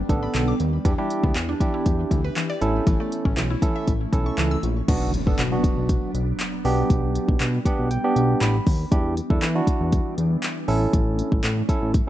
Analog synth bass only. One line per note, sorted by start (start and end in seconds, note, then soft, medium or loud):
0.09 0.28 A1 medium
0.35 0.54 B1 loud
0.60 0.79 D#2 medium
0.85 0.95 E2 loud
1.23 1.32 D2 medium
1.35 1.54 E2 medium
1.86 2.05 E2 loud
2.11 2.30 D2 medium
2.62 2.80 A1 loud
2.87 2.97 A1 loud
3.25 3.34 A1 loud
3.37 3.56 B1 loud
3.88 4.06 A1 loud
4.13 4.31 B1 medium
4.38 4.57 C#2 loud
4.63 4.82 A#1 loud
4.88 5.17 B1 loud
5.27 5.36 B1 medium
5.39 5.58 B2 loud
5.77 5.96 B1 medium
6.14 6.33 B1 medium
6.65 6.84 B1 loud
6.90 7.19 B1 loud
7.28 7.37 B1 loud
7.40 7.59 B2 loud
7.79 7.98 B1 medium
8.16 8.35 B1 loud
8.41 8.60 A1 loud
8.67 8.85 D#2 medium
8.92 9.21 E2 loud
9.30 9.39 E2 medium
9.42 9.61 E3 loud
9.81 10.00 E2 loud
10.18 10.37 E2 medium
10.68 10.87 A1 loud
10.93 11.22 A1 loud
11.32 11.41 A1 medium
11.44 11.63 A2 loud
11.82 12.01 A1 loud